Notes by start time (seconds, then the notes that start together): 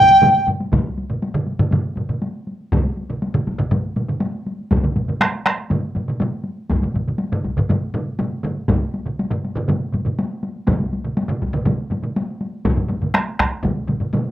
Already playing: G5
0.11 taiko high
0.22 taiko low-mid, taiko mid, taiko high
0.47 taiko low-mid, taiko mid, taiko high
0.60 taiko high
0.72 taiko, taiko low-mid, taiko mid, taiko high
0.86 taiko high
0.98 taiko high
1.10 taiko low-mid, taiko mid, taiko high
1.22 taiko high
1.35 taiko low-mid, taiko mid, taiko high
1.47 taiko high
1.59 taiko low-mid, taiko mid, taiko high
1.71 taiko low-mid, taiko mid, taiko high
1.83 taiko high
1.96 taiko low-mid, taiko mid, taiko high
2.09 taiko low-mid, taiko mid, taiko high
2.22 taiko high
2.35 taiko high
2.47 taiko high
2.61 taiko high
2.72 taiko, taiko low-mid, taiko mid, taiko high
2.85 taiko high
2.97 taiko high
3.09 taiko low-mid, taiko mid, taiko high
3.22 taiko high
3.34 taiko low-mid, taiko mid, taiko high
3.47 taiko, taiko high
3.59 taiko low-mid, taiko mid, taiko high
3.71 taiko low-mid, taiko mid, taiko high
3.85 taiko high
3.96 taiko low-mid, taiko mid, taiko high
4.09 taiko low-mid, taiko mid, taiko high
4.20 taiko high
4.33 taiko high
4.46 taiko high
4.59 taiko high
4.71 taiko, taiko low-mid, taiko mid, taiko high
4.83 taiko low-mid, taiko mid, taiko high
4.96 taiko low-mid, taiko mid, taiko high
5.08 taiko low-mid, taiko mid, taiko high
5.21 taiko rim, taiko high
5.33 taiko high
5.46 taiko rim, taiko high
5.58 taiko high
5.70 taiko low-mid, taiko mid, taiko high
5.82 taiko high
5.95 taiko low-mid, taiko mid, taiko high
6.08 taiko low-mid, taiko mid, taiko high
6.20 taiko low-mid, taiko mid, taiko high
6.32 taiko high
6.44 taiko high
6.70 taiko, taiko low-mid, taiko mid, taiko high
6.82 taiko low-mid, taiko mid, taiko high
6.94 taiko low-mid, taiko mid, taiko high
7.06 taiko low-mid, taiko mid, taiko high
7.18 taiko high
7.31 taiko low-mid, taiko mid, taiko high
7.44 taiko, taiko high
7.57 taiko low-mid, taiko mid, taiko high
7.69 taiko low-mid, taiko mid, taiko high
7.82 taiko high
7.94 taiko low-mid, taiko mid, taiko high
8.07 taiko high
8.19 taiko low-mid, taiko mid, taiko high
8.32 taiko high
8.44 taiko low-mid, taiko mid, taiko high
8.57 taiko high
8.69 taiko, taiko low-mid, taiko mid, taiko high
8.94 taiko high
9.06 taiko low-mid, taiko mid
9.19 taiko high
9.30 taiko low-mid, taiko mid, taiko high
9.45 taiko high
9.55 taiko low-mid, taiko mid, taiko high
9.68 taiko low-mid, taiko mid, taiko high
9.82 taiko high
9.93 taiko low-mid, taiko mid, taiko high
10.05 taiko low-mid, taiko mid, taiko high
10.19 taiko high
10.31 taiko high
10.43 taiko high
10.56 taiko high
10.67 taiko, taiko low-mid, taiko mid, taiko high
10.80 taiko high
10.93 taiko high
11.04 taiko low-mid, taiko mid, taiko high
11.17 taiko high
11.28 taiko low-mid, taiko mid, taiko high
11.42 taiko, taiko high
11.53 taiko low-mid, taiko mid, taiko high
11.66 taiko low-mid, taiko mid, taiko high
11.79 taiko high
11.90 taiko low-mid, taiko mid, taiko high
12.03 taiko low-mid, taiko mid, taiko high
12.16 taiko high
12.29 taiko high
12.41 taiko high
12.53 taiko high
12.65 taiko, taiko low-mid, taiko mid, taiko high
12.77 taiko low-mid, taiko mid, taiko high
12.89 taiko low-mid, taiko mid, taiko high
13.02 taiko low-mid, taiko mid, taiko high
13.14 taiko rim, taiko high
13.28 taiko high
13.39 taiko rim, taiko, taiko high
13.53 taiko high
13.63 taiko, taiko low-mid, taiko mid, taiko high
13.77 taiko high
13.88 taiko low-mid, taiko mid, taiko high
14.00 taiko low-mid, taiko mid, taiko high
14.13 taiko low-mid, taiko mid, taiko high
14.26 taiko high